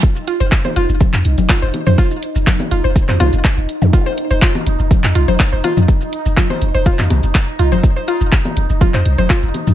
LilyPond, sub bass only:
\new Staff \with { instrumentName = "Sub bass" } { \clef bass \time 4/4 \key c \phrygian \tempo 4 = 123 r8. f,,16 r8 f,,16 f,,8 f,16 c,16 f,,16 r16 f,,16 r16 f,16 | r8. f,,16 r8 f,,16 f,,8 f,16 c,16 f,,16 r16 f,,16 r16 f,16 | r8. f,,16 r8 f,,16 f,,8 f,16 c,16 f,,16 r16 f,,16 r16 f,16 | r8. f,,16 r8 f,,16 f,,8 f,16 c,16 f,,16 r8 c,16 ees,,16 |
r8. f,,16 r8 f,,16 f,,8 f,16 c,16 f,,16 r16 f,,16 r16 f,16 | }